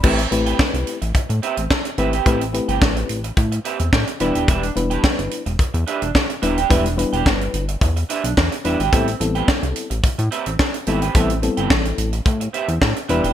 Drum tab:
CC |x---------------|----------------|----------------|----------------|
HH |-xxx-xxxxxxx-xxx|xxxx-xxxxxxx-xxx|xxxx-xxxxxxx-xxx|xxxx-xxxxxxx-xxx|
SD |----o-------o---|----o-------o---|----o-------o---|----o-------o---|
BD |o---o---o---o---|o---o---o---o---|o---o---o---o---|o---o---o---o---|

CC |----------------|----------------|
HH |xxxx-xxxxxxx-xxx|xxxx-xxxxxxx-xxx|
SD |----o-------o---|----o-------o---|
BD |o---o---o---o---|o---o---o---o---|